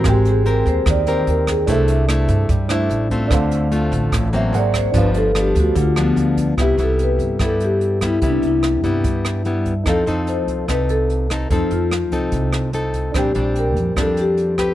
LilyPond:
<<
  \new Staff \with { instrumentName = "Grand piano" } { \time 4/4 \key c \major \tempo 4 = 146 <c' bes' g''>1 | <d' a' c'' e''>2~ <d' a' c'' e''>8 <d' a' c'' e''>4. | <d' a' c'' f''>2. <c' aes' bes' ges''>4 | <d' g' b' f''>1 |
<g' b' e''>1~ | <g' b' e''>1 | <ees' a' c'' f''>1~ | <ees' a' c'' f''>1 |
<d' bes' c'' g''>1 | }
  \new Staff \with { instrumentName = "Marimba" } { \time 4/4 \key c \major g'8 aes'8 bes'8 c''8 d''8 c''8 bes'8 aes'8 | a'2 r2 | r2 r8 e''8 d''8 c''8 | b'8 a'8 g'8 fis'8 f'8 b8 r4 |
g'8 a'8 b'4 a'8 g'4 e'8 | d'8 e'2 r4. | a'4 c''4 b'8 a'4. | ees'8 f'2 r4. |
g'4 bes'4 a'8 g'4. | }
  \new Staff \with { instrumentName = "Nylon-string guitar" } { \time 4/4 \key c \major << { <c' g' bes'>4 <c' g' bes'>4. <c' g' bes'>4. | <a d' e'>4 <a d' e'>4 r8 <a d' e'>4 <a c' f'>8~ | <a c' f'>4 <a c' f'>4. <fis bes c'>4. | <f b d'>4 <f b d'>4 r8 <f b d'>4. |
<g b e'>8 <g b e'>4. <g b e'>4. <g b e'>8 | <g b e'>4. <g b e'>4. <g b e'>8 r8 | <c' ees' a'>8 <c' ees' a'>4. <c' ees' a'>4. <c' ees' a'>8 | <c' ees' a'>4 r8 <c' ees' a'>4. <c' ees' a'>4 |
<g c' d'>8 <g c' d'>4. <g c' d'>4. <c' g' b'>8 | } \\ { aes2 ees2 | c2 g2 | d2 a,4 r4 | g,2 d2 |
c2 g,2 | c2 g,2 | f2 c2 | f2 c2 |
bes,2 f2 | } >> }
  \new Staff \with { instrumentName = "Upright bass" } { \clef bass \time 4/4 \key c \major aes,,4. ees,8 ees,4 ees,4 | c,4. g,8 g,4 a,,4 | d,4. a,,8 a,,4 aes,,4 | g,,4. d,8 d,4 d,4 |
c,8 c,4 g,8 g,2 | c,8 c,4 g,8 g,2 | f,8 f,4 c,8 c,2 | f,8 f,4 c,8 c,2 |
bes,,8 bes,,4 f,8 f,2 | }
  \new DrumStaff \with { instrumentName = "Drums" } \drummode { \time 4/4 <hh bd ss>8 hh8 hh8 <hh bd>8 <hh bd ss>8 hh8 hh8 <hh bd ss>8 | <hh bd>8 hh8 <hh ss>8 <hh bd>8 <hh bd>8 <hh ss>8 hh8 <hh bd>8 | <hh bd ss>8 hh8 hh8 <hh bd>8 <hh bd ss>8 hh8 hh8 <hh bd ss>8 | <hh bd>8 hh8 <hh ss>8 <hh bd>8 <hh bd>8 <hh ss>8 hh8 <hh bd>8 |
<hh bd ss>8 hh8 hh8 <hh bd>8 <hh bd ss>8 hh8 hh8 <hh bd ss>8 | <hh bd>8 hh8 <hh ss>8 <hh bd>8 <hh bd>8 <hh ss>8 hh8 <hh bd>8 | <hh bd ss>8 hh8 hh8 <hh bd>8 <hh bd ss>8 hh8 hh8 <hh bd ss>8 | <hh bd>8 hh8 <hh ss>8 <hh bd>8 <hh bd>8 <hh ss>8 hh8 <hh bd>8 |
<hh bd ss>8 hh8 hh8 <hh bd>8 <hh bd ss>8 hh8 hh8 <hh bd ss>8 | }
>>